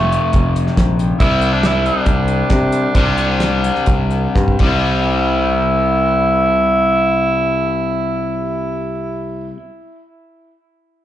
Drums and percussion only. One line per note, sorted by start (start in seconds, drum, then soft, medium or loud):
0.12 closed hi-hat medium
0.33 kick medium
0.33 closed hi-hat medium
0.56 closed hi-hat soft
0.67 snare soft
0.77 kick medium
0.77 snare medium
0.77 closed hi-hat medium
0.99 closed hi-hat medium
1.20 kick loud
1.20 closed hi-hat medium
1.42 closed hi-hat medium
1.63 snare medium
1.63 closed hi-hat medium
1.86 closed hi-hat soft
2.06 kick medium
2.06 closed hi-hat medium
2.28 closed hi-hat soft
2.50 kick medium
2.50 snare loud
2.50 closed hi-hat medium
2.72 closed hi-hat medium
2.95 kick loud
2.95 closed hi-hat medium
3.18 closed hi-hat medium
3.40 snare medium
3.40 closed hi-hat medium
3.64 closed hi-hat medium
3.75 snare soft
3.86 kick medium
3.86 closed hi-hat medium
4.11 closed hi-hat medium
4.35 kick medium
4.35 snare soft
4.48 kick medium
4.59 kick medium
4.59 crash medium